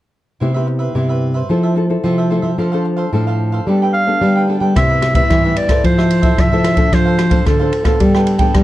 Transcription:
0.40 C3 B3 E4 G4 B4 C5 E5
0.54 B3 E4 G4 B4 C5 E5
0.67 muted cavaquinho stroke
0.79 B4 C5 E5
0.95 G2 C3 B3 E4 G4 B4 C5 E5
1.09 B4 C5 E5
1.34 B4 C5 E5
1.49 F3 C4 E4 F4 A4 C5 E5
1.63 A4 C5 E5
1.75 C4 E4 A4, muted cavaquinho stroke
1.89 C4 E4 A4
2.04 C3 F3 F4 A4 C5 E5
2.18 A4 C5 E5
2.30 C4 E4 F4 A4 C5 E5
2.42 F3 A4 C5 E5
2.58 F3 C4 D4 A4 C5 F5
2.72 C4 D4 A4 C5 F5
2.85 muted cavaquinho stroke
2.97 A4 C5 F5
3.13 A2 F3 C4 D4 A4 C5 F5
3.27 A4 C5 F5
3.52 A4 C5 F5
3.67 G3 B3 D4 A4 B4 G5
3.82 A4 B4 G5
3.93 F5, muted cavaquinho stroke
4.07 B3 D4 A4
4.21 D3 G3 D4 A4 B4 G5
4.36 A4 B4 G5
4.47 B3 D4 A4 B4 G5
4.60 G3 A4 B4 G5
4.75 C3 G3 B3 E4 B4 C5 E5, kick, cross-stick, ride
4.90 B4 C5 E5
5.02 muted cavaquinho stroke, cross-stick, ride
5.15 G3 B3 E4 B4 C5 E5, kick, ride
5.30 G2 E3 E4 B4 C5 E5, kick, cross-stick, ride
5.44 G3 B3 E4 B4 C5 E5
5.56 D5, muted cavaquinho stroke, ride
5.68 C4 E4 A4 B4 C5 E5, kick, cross-stick, ride
5.84 F3 F4 A4 C5 E5, kick, ride
5.98 A4 C5 E5, cross-stick
6.10 ride
6.22 C4 E4 A4 C5 E5, kick, ride
6.38 C3 F3 E5, kick, cross-stick, ride
6.52 F3 C4 E4 A4 C5 E5
6.64 F4 A4 C5 E5, cross-stick, ride
6.76 C4 D4 A4 C5 E5, kick, ride
6.92 F3 D4 A4 C5 F5, kick, cross-stick, ride
7.05 A4 C5 F5
7.18 muted cavaquinho stroke, cross-stick, ride
7.30 C4 D4 A4 C5 F5, kick, ride
7.45 D3 F3 D4 A4 C5 F5, kick, cross-stick, ride
7.59 C4 D4 A4 C5 F5
7.72 muted cavaquinho stroke, ride
7.84 B3 D4 A4 C5 F5, kick, cross-stick, ride
8.00 G3 D4 A4 B4 G5, kick, ride
8.14 A4 B4 G5, cross-stick
8.27 ride
8.38 B3 D4 A4 B4 G5, kick, ride
8.54 D3 G3, kick, cross-stick, ride

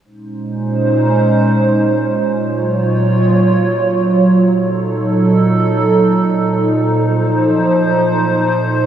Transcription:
0.04 A#2 G#3 C#4 D#4 C5
2.26 A#2 F#3 F4 C#5
4.48 A#2 D#4 A4
6.70 F3 C5

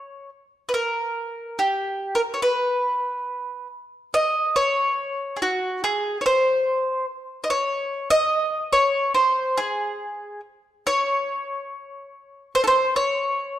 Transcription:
Already playing: C#5
0.69 B4
0.74 A#4
1.59 G4
2.15 A#4
2.34 C#5
2.42 B4
4.14 D#5
4.56 C#5
5.36 G#4
5.42 F#4
5.84 G#4
6.21 C#5
6.26 C5
7.44 D#5
7.50 C#5
8.10 D#5
8.73 C#5
9.14 C5
9.57 G#4
10.87 C#5
12.55 C5
12.64 A4 C5
12.96 C#5

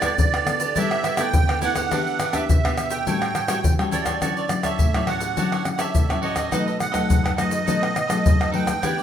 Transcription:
Already playing: G3 D5
0.01 B3 E4 G4 A4 B4 D5, pandeiro, tamborim, shaker, surdo
0.18 D3, pandeiro, shaker, surdo
0.33 G4 B4 D5, pandeiro, tamborim, shaker, surdo
0.46 B3 E4 A4, pandeiro, tamborim, shaker
0.60 G4 B4 D5, pandeiro, shaker
0.75 G3 B3 E4 G4 A4 B4 D5 E5, pandeiro, shaker, surdo
0.91 pandeiro, tamborim, shaker
1.03 E4 G4 B4 D5, pandeiro, tamborim, shaker
1.17 B3 E4 G4 A4 B4 D5 G5, pandeiro, tamborim, shaker
1.33 D3, pandeiro, shaker, surdo
1.47 G4 B4 D5, pandeiro, tamborim, shaker, surdo
1.61 B3 E4 G4 A4 B4 D5 F#5, pandeiro, shaker, surdo
1.75 G4 B4 D5, pandeiro, tamborim, shaker, surdo
1.91 E3 B3 D4 G4 B4 E5, pandeiro, tamborim, shaker, surdo
2.07 pandeiro, shaker
2.19 D4 G4 B4 E5, pandeiro, tamborim, shaker
2.33 B3 D4 G4 B4 E5, pandeiro, tamborim, shaker, surdo
2.49 B2, pandeiro, shaker, surdo
2.64 B3 D4 G4 B4 E5, pandeiro, tamborim, shaker, surdo
2.78 pandeiro, tamborim, shaker
2.90 G4 B4 E5 G5, pandeiro, shaker
3.06 A2 G3 C#4 E4 F#4 A4 C#5 G5, pandeiro, shaker, surdo
3.22 pandeiro, tamborim, shaker
3.35 E4 A4 C#5 G5, pandeiro, tamborim, shaker
3.47 G3 C#4 E4 F#4 A4 C#5 G5, pandeiro, tamborim, shaker
3.64 E3, pandeiro, shaker, surdo
3.78 G3 C#4 F#4 A4 C#5 G5, pandeiro, tamborim, shaker, surdo
3.91 E4 A4 C#5 D5 G5, pandeiro, shaker, surdo
4.05 A4 C#5 G5, pandeiro, tamborim, shaker, surdo
4.21 D3 F#3 C#4 E4 F#4 A4 C#5 D5, pandeiro, tamborim, shaker, surdo
4.37 A4 C#5 D5, pandeiro, shaker
4.49 F#3 C#4 E4, muted cavaquinho stroke, pandeiro, tamborim, shaker
4.63 A4 C#5 D5 E5, pandeiro, tamborim, shaker, surdo
4.79 A2, pandeiro, shaker, surdo
4.94 F#3 C#4 E4 A4 C#5 D5, pandeiro, tamborim, shaker, surdo
5.07 F#4 A4 C#5 D5 F#5, pandeiro, tamborim
5.21 pandeiro, shaker
5.37 D3 F#3 C#4 E4 F#4 A4 C#5 D5, pandeiro, shaker, surdo
5.52 A4 C#5 D5, pandeiro, tamborim, shaker
5.64 F#3 C#4 E4, muted cavaquinho stroke, pandeiro, tamborim, shaker
5.73 F#5
5.78 A4 C#5 D5 E5, pandeiro, tamborim, shaker
5.94 A2, pandeiro, shaker, surdo
6.09 F#3 C#4 E4 A4 C#5 D5, pandeiro, tamborim, shaker, surdo
6.22 F#4 A4 C#5 D5 D#5, pandeiro
6.35 A4 C#5 D5, pandeiro, tamborim, shaker, surdo
6.51 B2 F#3 A3 D#4 A4 B4 D#5, pandeiro, tamborim, shaker, surdo
6.66 A4 B4 D#5, pandeiro, shaker
6.79 F#5, muted cavaquinho stroke, pandeiro, tamborim, shaker
6.92 F#3 A3 D#4 A4 B4 D#5, pandeiro, tamborim, shaker, surdo
7.09 F#2, pandeiro, shaker, surdo
7.23 A4 B4 D#5, pandeiro, tamborim, shaker, surdo
7.36 F#3 A3 D#4 A4 B4 D#5, pandeiro, tamborim, shaker
7.51 pandeiro, shaker
7.66 B2 F#3 A3 D#4 A4 B4 D#5, pandeiro, shaker, surdo
7.81 A4 B4 D#5, pandeiro, tamborim, shaker
7.94 muted cavaquinho stroke, pandeiro, tamborim, shaker
8.07 F#3 A3 D#4 A4 B4 D#5, pandeiro, tamborim, shaker
8.25 F#2, pandeiro, shaker, surdo
8.40 A4 B4 D#5, pandeiro, tamborim, shaker, surdo
8.52 F#3 A3 D#4 A4 B4 D#5 G5, pandeiro
8.66 A4 B4 D#5, pandeiro, tamborim, shaker, surdo
8.82 E3 B3 D4 E4 G4 B4 D5, pandeiro, tamborim, shaker, surdo
8.98 G4 B4 D5, pandeiro, shaker

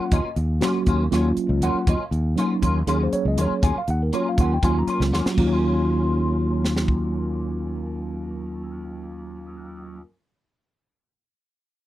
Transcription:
Already playing: F#3 A#3 C#4 F4 F#5
0.12 D#2 F#3 A#3 C#4 F4 D#5, kick, closed hi-hat
0.24 muted fretless electric bass stroke
0.36 D#2, closed hi-hat
0.61 F#3 A#3 C#4 F4 F#4, snare, closed hi-hat
0.86 D#2 A#3 C#4 F4, kick, closed hi-hat
1.11 D#2 F#3 A#3 C#4 F4, snare, closed hi-hat
1.37 muted fretless electric bass stroke, closed hi-hat
1.49 C#2
1.61 D#2 F#3 A#3 C#4 F4 F#5, closed hi-hat
1.74 muted fretless electric bass stroke
1.87 D#2 F#3 A#3 C#4 F4 D#5, kick, closed hi-hat
1.99 muted fretless electric bass stroke
2.11 D#2, closed hi-hat
2.36 F#3 A#3 C#4 D#4 F4, closed hi-hat
2.62 D#2 A#3 C#4 F4, kick, closed hi-hat
2.87 D#2 F#3 A#3 C#4 F4 G#4, closed hi-hat
3.03 C5
3.12 C#5, muted fretless electric bass stroke, closed hi-hat
3.25 C#2 D#5
3.38 D#2 F#3 A#3 C#4 F4 C#5, closed hi-hat
3.50 muted fretless electric bass stroke
3.63 D#2 F#3 A#3 C#4 F4 G#5, kick, closed hi-hat
3.76 F5, muted fretless electric bass stroke
3.88 D#2 F#5, closed hi-hat
4.03 A#4
4.13 F#3 A#3 C#4 F4 C#5, closed hi-hat
4.29 F5
4.38 D#2 A#3 C#4 F4 F#5, kick, closed hi-hat
4.54 G5
4.62 D#2 F#3 A#3 C#4 F4 G#5, kick, closed hi-hat
4.79 A#5
4.87 A#3 C#4 F4 C6, muted fretless electric bass stroke, closed hi-hat
5.00 C#2, snare
5.12 D#2 F#3 A#3 C#4 F4, snare
5.26 muted fretless electric bass stroke, snare
5.31 F#3
5.37 D#2 A#3 C#4 F4, kick, crash
5.46 C#4
5.52 F4
6.65 snare
6.76 snare
6.88 kick

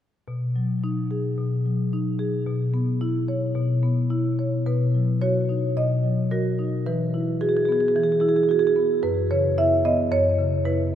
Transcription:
0.28 B2
0.56 F#3
0.84 D#4
1.11 G#4
1.38 B2
1.66 F#3
1.93 D#4
2.19 G#4
2.46 B2
2.74 B3
3.01 E4
3.28 C#5
3.55 B2
3.83 B3
4.10 E4
4.39 C#5
4.66 B2 B4
4.94 F#3
5.21 F#4 C#5
5.49 D#4
5.77 B2 D#5
6.04 F#3
6.31 F#4 A#4
6.59 D#4
6.86 E3 B4
7.14 E4
7.41 F#4 G#4
7.49 G#4
7.57 G#4
7.65 B3 G#4
7.72 G#4
7.80 G#4
7.88 G#4
7.95 E3 G#4
8.03 G#4
8.12 G#4
8.20 E4 G#4
8.29 G#4
8.36 G#4
8.43 G#4
8.49 F#4 G#4
8.59 G#4
8.67 G#4
8.76 B3
9.03 F#2 B4
9.31 C#3 C#5
9.58 E4 E5
9.85 B3 D#5
10.12 F#2 C#5
10.39 C#3
10.65 E4 B4

